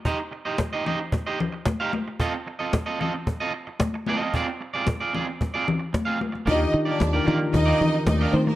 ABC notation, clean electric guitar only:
X:1
M:4/4
L:1/16
Q:1/4=112
K:Eb
V:1 name="Clean electric guitar"
[EGce] z2 [EGce] z [EGce] [EGce] z2 [EGce] z3 [EGcf] z2 | [CF=Ae] z2 [CFAe] z [CFAe] [CFAe] z2 [CFAe] z4 [CFAe] [CFAe] | [CFAd] z2 [CFAd] z [CFAd] [CFAd] z2 [CFAd] z3 [CFAf] z2 | [B,FGd] z2 [B,FGd] z [B,FGd] [B,FGd] z2 [B,FGd] z3 [B,FGe] z2 |]